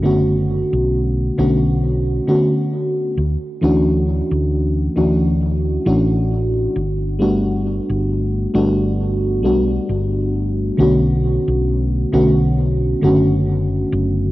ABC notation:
X:1
M:4/4
L:1/16
Q:"Swing 16ths" 1/4=67
K:Bm
V:1 name="FM electric piano"
[D,A,B,CF]6 [D,A,B,CF]4 [D,A,B,CF]4 z2 | [E,A,CDF]6 [E,A,CDF]4 [E,A,CDF]4 z2 | [G,A,B,DF]6 [G,A,B,DF]4 [G,A,B,DF]6 | [D,A,B,CF]6 [D,A,B,CF]4 [D,A,B,CF]6 |]
V:2 name="Fingered electric bass" clef=bass
F,,,3 B,,,3 B,,,4 z4 D,, z | D,,3 D,,3 D,,4 A,,,4 G,,,2- | G,,,3 G,,,3 G,,,4 B,,, z G,,,4 | B,,,3 B,,,3 B,,,4 F,,,4 F,,,2 |]